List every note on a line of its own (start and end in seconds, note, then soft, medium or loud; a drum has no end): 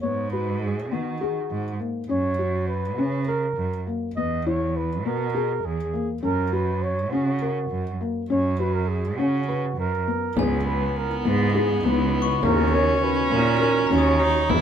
0.02 0.93 G#2 medium
0.02 0.24 B3 medium
0.02 0.30 C#5 medium
0.32 0.74 F#4 medium
0.32 0.63 B4 medium
0.62 0.94 G#4 medium
0.91 1.38 D#3 medium
0.91 1.12 B3 medium
0.91 1.81 F#4 medium
1.21 1.63 G#4 medium
1.51 1.74 G#2 medium
1.79 2.01 A#3 soft
2.09 2.99 F#2 medium
2.09 2.30 C#4 medium
2.09 2.66 C#5 medium
2.39 2.81 F#4 medium
2.68 3.23 B4 medium
2.97 3.45 C#3 medium
2.97 3.19 C#4 medium
3.28 3.83 A#4 medium
3.28 3.70 A#4 medium
3.56 3.80 F#2 medium
3.87 4.08 A#3 medium
4.16 5.06 E2 medium
4.16 4.38 B3 medium
4.16 4.48 D#5 medium
4.46 4.88 E4 medium
4.46 4.78 C#5 medium
4.76 5.05 B4 medium
5.05 5.52 B2 medium
5.05 5.26 B3 medium
5.05 5.67 A#4 medium
5.35 5.76 G#4 medium
5.64 5.87 E2 medium
5.64 6.09 G#4 medium
5.93 6.14 A#3 medium
6.23 7.13 F#2 medium
6.23 6.44 C#4 medium
6.23 6.55 A#4 medium
6.53 6.94 F#4 medium
6.53 6.84 B4 medium
6.82 7.12 C#5 medium
7.11 7.58 C#3 medium
7.11 7.33 C#4 medium
7.11 8.00 F#4 medium
7.42 7.83 A#4 medium
7.70 7.94 F#2 medium
8.01 8.21 A#3 medium
8.29 9.19 F#2 medium
8.29 8.51 C#4 medium
8.29 8.61 C#5 medium
8.59 9.01 F#4 medium
8.59 8.75 B4 medium
8.74 8.89 A#4 medium
8.88 9.19 G#4 medium
9.17 9.65 C#3 medium
9.17 9.40 C#4 medium
9.17 9.77 F#4 medium
9.48 9.90 B4 medium
9.77 10.01 F#2 medium
9.77 10.39 A#4 medium
10.07 10.28 B3 medium
10.36 11.07 C#2 medium
10.36 12.42 C#3 medium
10.36 10.57 B3 medium
10.36 12.45 B3 medium
10.36 12.42 B3 medium
10.36 12.42 D#4 medium
10.36 12.42 E4 medium
10.36 14.46 F#4 medium
10.36 10.67 G#4 medium
10.36 12.14 G#5 medium
10.36 frame drum medium
10.66 11.08 B4 medium
10.66 10.98 B4 medium
10.97 11.18 A#4 medium
11.18 11.29 A#4 medium
11.24 11.72 G#2 medium
11.24 11.46 B3 medium
11.24 11.87 G#4 medium
11.24 frame drum soft
11.55 11.76 G#4 medium
11.83 12.31 C#2 medium
11.83 12.26 B3 medium
11.83 12.43 B4 medium
11.83 frame drum soft
12.13 frame drum soft
12.22 12.69 C#6 medium
12.42 13.13 D#2 medium
12.42 14.48 D#3 medium
12.42 12.64 A#3 medium
12.42 14.48 C#4 medium
12.42 14.21 C#4 loud
12.42 12.71 A#4 medium
12.42 frame drum medium
12.73 13.14 A#4 medium
12.73 13.05 C#5 medium
13.03 13.35 B4 medium
13.31 13.78 A#2 medium
13.31 13.52 A#3 medium
13.31 13.92 A#4 medium
13.31 frame drum soft
13.61 13.82 A#4 medium
13.87 14.37 D#2 medium
13.87 14.32 C#4 medium
13.87 14.61 A#5 medium
13.91 14.52 C#5 medium
13.91 14.61 C#6 soft
13.91 frame drum soft
13.98 14.61 D#6 soft
14.20 14.51 D#4 medium
14.20 frame drum soft
14.49 14.61 E2 medium
14.49 14.61 E3 medium
14.49 14.61 B3 medium
14.49 14.61 E4 loud
14.49 14.61 G#4 medium
14.49 14.61 B4 medium
14.49 14.61 D#5 medium
14.49 frame drum medium